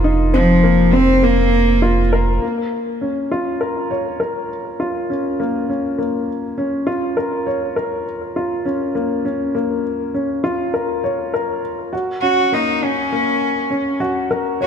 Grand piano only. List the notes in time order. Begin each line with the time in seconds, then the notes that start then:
Already playing: C4 D#4 F4 A#4
0.04 D#4
0.34 C4
0.63 A#3
0.93 C4
1.23 A#3
1.82 F4
2.13 A#4
2.42 A#3
3.01 C#4
3.31 F4
3.61 A#4
3.91 C#5
4.20 A#4
4.80 F4
5.10 C#4
5.40 A#3
5.69 C#4
5.98 A#3
6.58 C#4
6.87 F4
7.17 A#4
7.46 C#5
7.76 A#4
8.36 F4
8.65 C#4
8.95 A#3
9.25 C#4
9.55 A#3
10.14 C#4
10.44 F4
10.74 A#4
11.04 C#5
11.34 A#4
11.93 F#4
12.22 C#4
12.52 A#3
12.82 C#4
13.12 A#3
13.70 C#4
14.00 F#4
14.31 A#4
14.61 C#5